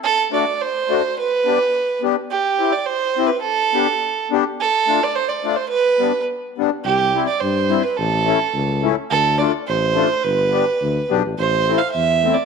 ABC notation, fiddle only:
X:1
M:2/4
L:1/16
Q:1/4=106
K:Gmix
V:1 name="Fiddle"
A2 d2 c4 | B6 z2 | G3 d c3 B | A6 z2 |
A3 d c d2 c | B4 z4 | G3 d c3 B | A6 z2 |
A2 d2 c4 | B6 z2 | c3 f e3 d |]